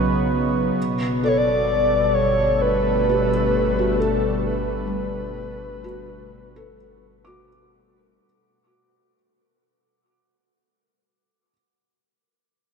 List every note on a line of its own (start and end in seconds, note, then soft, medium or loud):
0.00 0.72 B1 medium
0.00 0.77 C#3 medium
0.00 0.77 F#3 medium
0.00 2.69 B3 medium
0.00 0.77 D#4 medium
0.00 2.13 B4 medium
0.00 8.26 C#6 medium
0.76 8.20 G1 medium
0.76 8.24 B2 medium
1.22 8.24 A4 medium
1.22 3.28 A4 medium
1.22 1.30 D5 loud
1.28 1.39 C#5 medium
1.37 2.16 D5 loud
1.66 8.24 G3 medium
2.15 2.63 C#5 loud
2.46 8.24 A3 medium
2.46 8.24 D4 medium
2.61 4.01 B4 loud
3.09 3.97 G4 medium
3.79 5.83 F#4 soft
4.00 4.46 A4 medium
4.47 7.73 B4 loud
4.87 9.14 G3 medium
5.84 6.74 F#4 medium
6.56 7.47 A4 medium
7.25 11.52 F#4 medium
7.25 11.49 D6 medium